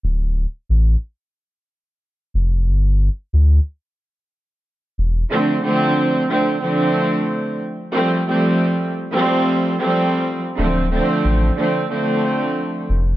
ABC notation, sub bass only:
X:1
M:4/4
L:1/16
Q:"Swing 16ths" 1/4=91
K:Dm
V:1 name="Sub bass" clef=bass
D,,,3 z A,,,2 z8 F,,,2 | G,,,3 z D,,2 z8 E,,,2 | z16 | z16 |
D,,,3 z A,,,2 z8 F,,,2 |]